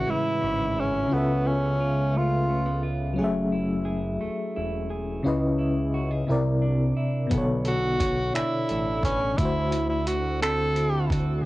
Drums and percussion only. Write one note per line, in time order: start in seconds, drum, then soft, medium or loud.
7.31 kick loud
7.31 closed hi-hat medium
7.65 closed hi-hat soft
8.00 kick medium
8.00 closed hi-hat medium
8.35 finger snap medium
8.35 closed hi-hat medium
8.69 closed hi-hat soft
9.03 kick medium
9.03 closed hi-hat medium
9.38 kick loud
9.38 closed hi-hat medium
9.72 closed hi-hat soft
10.07 closed hi-hat medium
10.42 finger snap loud
10.42 closed hi-hat medium
10.76 closed hi-hat soft
11.10 kick medium
11.10 closed hi-hat medium